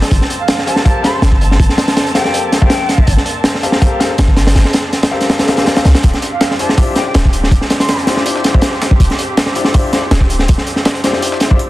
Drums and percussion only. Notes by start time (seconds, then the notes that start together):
0.02 snare, closed hi-hat
0.11 kick, closed hi-hat
0.21 snare
0.30 closed hi-hat
0.48 snare, closed hi-hat
0.58 snare
0.67 closed hi-hat
0.76 snare
0.85 kick, closed hi-hat
1.04 snare, closed hi-hat
1.22 snare, closed hi-hat
1.32 kick
1.41 closed hi-hat
1.51 snare
1.60 kick, closed hi-hat
1.69 snare
1.78 snare, closed hi-hat
1.88 snare, closed hi-hat
1.96 snare, closed hi-hat
2.06 closed hi-hat
2.15 snare, closed hi-hat
2.25 snare
2.34 closed hi-hat
2.52 snare, closed hi-hat
2.62 kick
2.70 snare, closed hi-hat
2.89 snare, closed hi-hat
2.98 kick
3.07 kick, closed hi-hat
3.17 snare
3.26 closed hi-hat
3.44 snare, closed hi-hat
3.55 snare
3.63 closed hi-hat
3.72 snare
3.82 kick, closed hi-hat
4.00 snare, closed hi-hat
4.18 snare, closed hi-hat
4.28 kick
4.37 snare, closed hi-hat
4.47 snare, closed hi-hat
4.56 snare, closed hi-hat
4.65 snare
4.73 snare, closed hi-hat
4.93 snare, closed hi-hat
5.03 snare, closed hi-hat
5.21 snare, closed hi-hat
5.29 snare, closed hi-hat
5.39 snare, closed hi-hat
5.48 snare, closed hi-hat
5.57 snare, closed hi-hat
5.67 snare, closed hi-hat
5.76 snare, closed hi-hat
5.85 snare, closed hi-hat
5.95 snare, closed hi-hat
6.03 kick, closed hi-hat
6.14 snare, closed hi-hat
6.22 closed hi-hat
6.41 snare, closed hi-hat
6.51 snare
6.59 closed hi-hat
6.69 snare
6.77 kick, closed hi-hat, open hi-hat
6.95 snare, closed hi-hat
7.14 snare, closed hi-hat
7.25 kick, snare
7.33 closed hi-hat
7.43 snare
7.51 kick, closed hi-hat
7.61 snare
7.70 snare, closed hi-hat
7.80 snare, closed hi-hat
7.89 snare, closed hi-hat
7.99 closed hi-hat
8.07 snare, closed hi-hat
8.17 snare
8.26 closed hi-hat
8.36 snare
8.44 snare, closed hi-hat
8.54 kick
8.61 snare, closed hi-hat
8.63 closed hi-hat
8.73 snare
8.82 snare, closed hi-hat
8.91 kick
9.00 kick, closed hi-hat
9.10 snare, closed hi-hat
9.19 closed hi-hat
9.37 snare, closed hi-hat
9.46 snare
9.55 closed hi-hat
9.64 snare
9.74 kick, closed hi-hat, open hi-hat
9.93 snare, closed hi-hat
10.11 snare, closed hi-hat
10.21 kick, snare
10.30 closed hi-hat
10.39 snare
10.48 kick, closed hi-hat
10.58 snare
10.67 closed hi-hat
10.76 snare
10.85 snare, closed hi-hat
10.95 closed hi-hat
11.04 snare, closed hi-hat
11.13 snare
11.22 closed hi-hat
11.32 snare
11.40 snare, closed hi-hat
11.51 kick
11.59 closed hi-hat